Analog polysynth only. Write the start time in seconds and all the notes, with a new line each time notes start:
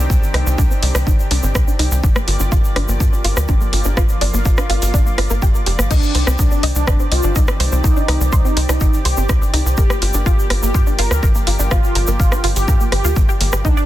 5.91 D4
6.39 D4
6.76 D4
7.12 F4
7.84 D#4
8.33 D#4
8.69 D#4
9.05 G4
9.78 G4
10.26 G4
10.63 G4
10.99 A#4
11.71 F4
12.20 F4
12.56 G4
12.92 G4
13.65 D4